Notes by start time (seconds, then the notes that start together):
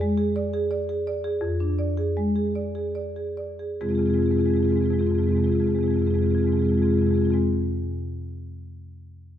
Already playing: F2 G#4
0.01 G#3
0.17 G#4
0.36 D5
0.54 G#4
0.71 D5
0.89 G#4
1.07 D5
1.24 G#4
1.41 F2
1.60 D4
1.79 D5
1.97 G#4
2.17 G#3
2.36 G#4
2.55 D5
2.75 G#4
2.95 D5
3.16 G#4
3.37 D5
3.59 G#4
3.81 F2 C3 G#3 C4 F4 G#4
3.89 F2 C3 G#3 C4 F4 G#4
3.95 C3 G#3 C4 F4 G#4
4.00 F2 G#4
4.06 F2 C3 G#3 C4 F4
4.10 F4 G#4
4.14 C3 G#3 C4 G#4
4.19 F2 G#3 C4 F4
4.26 C3 F4 G#4
4.30 F2 G#3 C4 G#4
4.37 F2 C3 G#3 C4 F4
4.41 C3 G#4
4.45 G#3 C4 F4 G#4
4.50 F2 G#3 F4
4.55 C3 C4 G#4
4.60 F2 C3 G#3 F4
4.64 G#3 C4 G#4
4.70 F2 C3 C4 F4 G#4
4.76 G#3 F4 G#4
4.82 G#3 C4 F4 G#4
4.90 F2 C3 G#3 C4 F4 G#4
4.99 F2 C3 G#3 C4 F4 G#4
5.07 C3 G#3 C4 F4 G#4
5.11 F2 G#4
5.15 G#3 C4 F4
5.20 F2 C3 C4 G#4
5.26 F2 C3 G#3 F4 G#4
5.32 G#3 C4
5.36 F2 C3 C4 F4 G#4
5.43 C3 G#3 F4 G#4
5.47 F2 C4
5.51 C3 G#3 F4 G#4
5.56 F2 G#3 C4
5.60 F4 G#4
5.64 C3 G#3 C4 G#4
5.68 F2 C4 F4
5.75 F2 C3 G#3 F4 G#4
5.81 C3 G#3 C4 G#4
5.86 F2 G#3 C4 F4
5.91 C3 F4 G#4
5.96 F2 G#3 C4 G#4
6.01 C3 C4 F4
6.06 F2 G#3 G#4
6.11 C3 G#3 C4 F4
6.15 F2 F4 G#4
6.22 F2 C3 G#3 C4 G#4
6.26 F4 G#4
6.31 C3 G#3 C4 F4
6.35 F2 G#3 G#4
6.40 C3 C4 F4
6.44 F2 G#3 C4 G#4
6.49 C3 F4 G#4
6.54 F2 G#3 C4
6.59 F2 C3 G#3 F4 G#4
6.64 C4 G#4
6.69 F2 C3 G#3 F4
6.74 G#3 C4 F4 G#4
6.79 F2 C3 C4 G#4
6.85 C3 G#3 F4
6.90 F2 C4 F4 G#4
6.94 C3 G#3
6.98 F2 C4 F4 G#4
7.03 G#3 G#4
7.07 F2 C3 G#3 C4 F4
7.14 C3 G#3 C4 F4 G#4
7.21 F2 C4 G#4
7.25 C3 G#3 F4
7.30 F2 C4 F4 G#4
7.34 C3 G#3